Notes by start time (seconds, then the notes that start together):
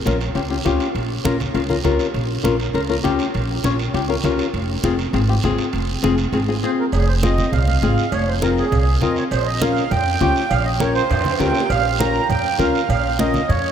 0.05 A#1 C#4 F4 A#4, high conga, high timbale, short guiro
0.20 high timbale, short guiro
0.35 C#2 C#4 F4 G4, high conga, high timbale, long guiro
0.50 C#4 F4 G4
0.65 C#2 C#4 F4 G4, high conga, high timbale, low timbale, short guiro
0.80 high timbale, short guiro
0.95 A#1, high conga, high timbale, long guiro
1.24 A#1 C#4 F4 A#4, high conga, high timbale, short guiro
1.40 high conga, high timbale, short guiro
1.54 C#2 C#4 F4 A#4, high conga, high timbale, long guiro
1.69 C#4 F4 A#4, high conga
1.84 C#2 C#4 F4 A#4, high conga, high timbale, low timbale, short guiro
1.99 high timbale, short guiro
2.14 A#1, high conga, high timbale, long guiro
2.43 A#1 C#4 F4 A#4, high conga, high timbale, short guiro
2.60 high timbale, short guiro
2.74 C#2 C#4 F4 A#4, high conga, high timbale, long guiro
2.89 C#4 F4 A#4
3.04 C#2 C#4 F4 G4, high conga, high timbale, short guiro
3.19 high timbale, short guiro
3.34 A#1, high conga, high timbale, long guiro
3.64 A#1 C#4 F4 C#5, high conga, high timbale, short guiro
3.79 high timbale, short guiro
3.93 C#2 C#4 F4 G4, high conga, high timbale, long guiro
4.09 C#4 F4 A#4
4.24 C#2 C#4 F4 A#4, high conga, high timbale, low timbale, short guiro
4.39 high timbale, short guiro
4.54 F1, high conga, high timbale, long guiro
4.84 F1 C4 F4 G#4, high conga, high timbale, short guiro
4.99 high timbale, short guiro
5.13 G#1 C4 F4 G#4, high conga, high timbale, long guiro
5.28 C4 F4 G4
5.43 G#1 C4 F4 G#4, high conga, high timbale, short guiro
5.58 high timbale, short guiro
5.73 F1, high conga, high timbale, long guiro
6.03 F1 C4 F4 G#4, high conga, high timbale, short guiro
6.18 high timbale, short guiro
6.32 G#1 C4 F4 G#4, high conga, high timbale, long guiro
6.48 C4 F4 G#4
6.63 C4 F4 G#4 C5
6.80 A#4
6.92 F1 G#4, cowbell, high conga, long guiro
7.08 C5
7.23 C4 F4 G#4 D#5, high conga, short guiro
7.38 high conga, short guiro
7.52 C2 F5, cowbell, high conga, low conga, long guiro
7.67 high conga
7.82 G#1 C4 F4 G#4, high conga, short guiro
7.98 short guiro
8.12 F1 C#5, cowbell, high conga, long guiro
8.28 C5
8.42 C4 F4 A#4, high conga, short guiro
8.58 G#4, short guiro
8.72 C2, cowbell, high conga, low conga, long guiro
9.01 F2 C4 F4 A#4 D#5, high conga, short guiro
9.16 C#5, short guiro
9.31 A#1 C5, cowbell, high conga, long guiro
9.46 D#5
9.61 C#4 F4 A#4 F5, high conga, short guiro
9.76 short guiro
9.91 F2 G5, cowbell, high conga, low conga, long guiro
10.20 C#2 C#4 F4 G4, high conga, short guiro
10.36 short guiro
10.50 A#1 F5, cowbell, high conga, long guiro
10.65 D#5
10.80 C#4 F4 A#4 C#5, high conga, short guiro
10.95 C5, short guiro
11.10 F2, cowbell, high conga, low conga, high timbale, long guiro
11.21 high timbale
11.25 high conga
11.30 high timbale
11.39 C#2 C#4 F4 A#4 G5, high conga, low timbale, short guiro
11.50 low timbale
11.55 short guiro
11.60 low timbale
11.70 A#1 F5, cowbell, high conga, long guiro
11.99 C#4 F4 A#4 A#5, high conga, short guiro
12.14 short guiro
12.29 F2 G5, cowbell, high conga, low conga, long guiro
12.58 C#2 C#4 F4 A#4 F5, high conga, short guiro
12.75 short guiro
12.89 A#1 F5, cowbell, high conga, low conga, long guiro
13.19 C#4 F4 A#4 D#5, high conga, short guiro
13.34 high conga, short guiro
13.49 F2 C#5, cowbell, high conga, low conga, long guiro